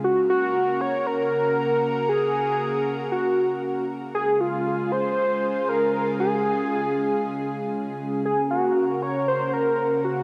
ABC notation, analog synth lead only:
X:1
M:4/4
L:1/8
Q:1/4=117
K:Gblyd
V:1 name="Analog synth lead"
G G2 d B4 | A4 G3 z | A F2 c3 B2 | A6- A z |
A G2 d c B2 G |]